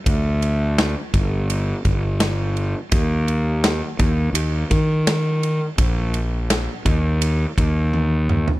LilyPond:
<<
  \new Staff \with { instrumentName = "Fingered electric bass" } { \clef bass \time 4/4 \key ees \lydian \tempo 4 = 84 d,4. g,,4 g,,4. | ees,4. ees,8 ees,8 ees4. | bes,,4. ees,4 ees,4. | }
  \new DrumStaff \with { instrumentName = "Drums" } \drummode { \time 4/4 <bd cymr>8 cymr8 <cymr sn>8 <bd cymr>8 cymr8 <bd cymr>8 <cymr sn>8 cymr8 | <bd cymr>8 cymr8 <cymr sn>8 <bd cymr>8 cymr8 <bd cymr>8 <cymr sn>8 cymr8 | <bd cymr>8 cymr8 <cymr sn>8 <bd cymr>8 cymr8 <bd cymr>8 tommh8 toml16 tomfh16 | }
>>